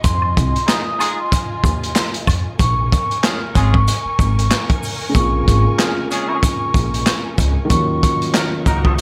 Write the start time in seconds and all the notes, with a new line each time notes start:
Already playing: D#5
0.04 F2 F4 G#5 C6, kick, closed hi-hat, maracas
0.22 high woodblock
0.37 C2, kick, closed hi-hat, maracas
0.56 closed hi-hat
0.67 G#3 D#4 F4 G#4 D#6, snare, clap, closed hi-hat, maracas
0.99 G#3 D#4 F4 G#4, closed hi-hat, high woodblock, maracas
1.19 C6
1.32 kick, closed hi-hat, maracas
1.64 D#2, kick, closed hi-hat, maracas
1.83 closed hi-hat
1.96 snare, clap, closed hi-hat, maracas
2.14 closed hi-hat
2.27 F2, kick, closed hi-hat, high woodblock, maracas
2.58 A#1 A#4 G#5 C#6, kick, closed hi-hat, maracas
2.92 kick, closed hi-hat, maracas
3.11 closed hi-hat
3.23 G#3 C#4 F4 G#4 F6, snare, clap, closed hi-hat, maracas
3.55 G#1 G#3 C#4 F4 G#4, kick, closed hi-hat, maracas
3.73 C#6, kick
3.88 closed hi-hat, maracas
4.05 muted upright bass stroke
4.19 G#1, kick, closed hi-hat, maracas
4.39 closed hi-hat
4.51 snare, clap, closed hi-hat, maracas
4.69 kick, closed hi-hat
4.83 open hi-hat, maracas
5.09 C#3 G#3
5.14 A#1 A#3 C4 C#6, kick, closed hi-hat, maracas
5.19 F4
5.48 G#1, kick, closed hi-hat, maracas
5.78 G#3 C#4 F4 G#4 F6, snare, clap, closed hi-hat, maracas
6.11 G#3 C#4 F4 G#4, closed hi-hat, maracas
6.28 C#6
6.43 kick, closed hi-hat, maracas
6.74 A#1, kick, closed hi-hat, maracas
6.94 closed hi-hat
7.06 snare, clap, closed hi-hat, maracas
7.38 C#2, kick, closed hi-hat, maracas
7.65 D#3 F3
7.70 D#2 F#3 A#3 C#4 D#5 C#6, kick, closed hi-hat, maracas
7.74 F#3 F4
8.03 kick, closed hi-hat, maracas
8.22 closed hi-hat
8.34 A#3 D#4 F#4 A#4 F6, snare, clap, closed hi-hat, maracas
8.66 C#2 A#3 D#4 F#4 A#4, kick, closed hi-hat, maracas
8.84 D#6, kick